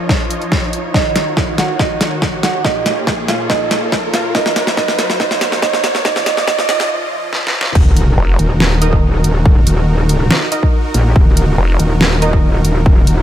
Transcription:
Already playing: F3 F4 A#4 C#5 D#5 A#5, riser
0.09 kick, snare
0.31 closed hi-hat
0.42 closed hi-hat
0.52 kick, snare
0.73 closed hi-hat
0.94 D#3 D#4 F#4 D#5, kick, snare
1.16 snare, closed hi-hat
1.37 kick, snare
1.58 F#4 F#5, snare, closed hi-hat
1.79 D#4 D#5, kick, snare
2.01 snare, closed hi-hat
2.22 kick, snare
2.43 F#4 F#5, snare, closed hi-hat
2.65 A#2 A#3 D#4 F4 D#5, kick, snare
2.86 snare, closed hi-hat
3.07 kick, snare
3.28 F4 F5, snare, closed hi-hat
3.50 D#4 D#5, kick, snare
3.71 snare, closed hi-hat
3.92 kick, snare
4.14 F4 F5, snare, closed hi-hat
4.35 F#3 D#4 F#4 A#4 D#5, kick, snare
4.46 snare
4.56 snare, closed hi-hat
4.67 snare
4.77 D#4 D#5, kick, snare
4.88 snare
4.99 snare, closed hi-hat
5.10 snare
5.20 D#4 D#5, kick, snare
5.31 snare
5.41 snare, closed hi-hat
5.52 snare
5.62 D#4 D#5, kick, snare
5.73 snare
5.84 snare, closed hi-hat
5.95 snare
6.05 F3 D#4 F4 D#5, kick, snare
6.16 snare
6.26 D#4 D#5, snare, closed hi-hat
6.37 snare
6.48 D#4 D#5, kick, snare
6.59 snare
6.69 D#4 D#5, snare, closed hi-hat
6.80 snare
7.33 snare
7.47 snare
7.61 snare
7.75 D#1 D#4 F#4 A#4, kick, crash, sub drop
7.97 closed hi-hat
8.18 F1
8.39 D#1, closed hi-hat
8.60 snare
8.82 D#4 A#4 D#5, closed hi-hat
8.93 kick
9.24 D#1, closed hi-hat
9.46 kick
9.67 D#1, closed hi-hat
10.09 closed hi-hat
10.31 snare
10.52 D#4 A#4 D#5, closed hi-hat
10.63 kick
10.94 A#1, closed hi-hat
11.16 D#1, kick
11.37 closed hi-hat
11.58 F1
11.80 D#1, closed hi-hat
12.01 snare
12.22 D#4 A#4 D#5, closed hi-hat
12.33 kick
12.65 D#1, closed hi-hat
12.86 kick
13.07 D#1, closed hi-hat

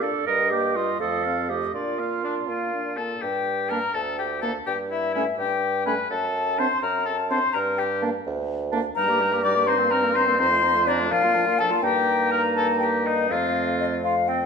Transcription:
Already playing: D5
0.02 D4 A4 D5
0.26 G2 G3 A#4 D#5
0.50 A#3 G4 G5
0.75 G3 F4 D#5
1.00 F2 A3 A4 D#5 F5
1.24 C4 F5
1.49 A3 G4 D#5
1.74 A#2 D4 F4 D5
1.99 A#3 F5
2.23 D4 D5
2.48 A#2 A#3 F4 F5
2.74 D4
2.96 A#3 A4 A5
3.22 G2 G4 G5
3.69 A#3 D4 A#4 A#5
3.94 D2 A4 A5
4.18 G4 G5
4.42 A#3 D4 A4 A5
4.66 G2 G4 G5
4.90 E4 E5
5.14 A3 C#4 E4 E5
5.37 G2 G4 G5
5.86 A3 C#4 B4 B5
6.10 F#2 A4 A5
6.59 C4 D4 C5 C6
6.82 F#2 A#4 A#5
7.05 A4 A5
7.30 C4 D4 C5 C6
7.53 G2 A#4 A#5
7.78 G4 G5
8.02 A#3 D4
8.26 D2
8.72 A#3 D4
8.95 G2 G3 D#4 A#4 A#5
9.09 A#3 G4
9.21 G3 D#4
9.32 A#3 G4
9.42 G3 D#4 D5 D6
9.55 A#3 G4
9.67 C4 D#4 C5 C6
9.79 A#3 C4
9.91 C4 D#4 A#4 A#5
10.03 A#3 C4
10.14 C4 D#4 C5 C6
10.26 A#3 C4
10.38 F2 C4 D#4 C5 C6
10.50 A3 F4
10.63 C4 D#4
10.74 A3 F4
10.87 C4 D4 D#4 D5
10.99 A3 F4
11.10 A#2 F3 D4 F4 F5
11.23 A#3 F4
11.34 F3 D4
11.46 A#3 F4
11.58 F3 D4 A4 A5
11.70 A#3 F4
11.83 G2 A#3 D#4 G4 G5
12.31 A#4 A#5
12.56 A4 A5
12.79 G4 G5
13.05 D#4 D#5
13.29 F2 A3 C4 F4 F5
13.80 D#5
14.04 F4 F5
14.28 C4 G5

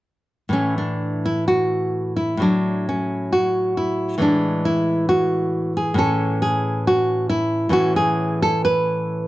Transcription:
0.49 A2 E3 A3 C#4
0.78 D4
1.26 E4
1.48 F#4
2.16 E4
2.37 A2 F#3 A3
2.42 D4
2.89 C#4
3.33 F#4
3.77 E4
4.18 A2 E3 G#3
4.22 D4
4.65 E4
5.09 F#4
5.77 G#4
5.94 A2 E3 C#4
5.99 A4
6.42 G#4
6.87 F#4
7.29 E4
7.69 A2 E3 C#4 F#4
7.96 G#4
8.42 A4
8.65 B4

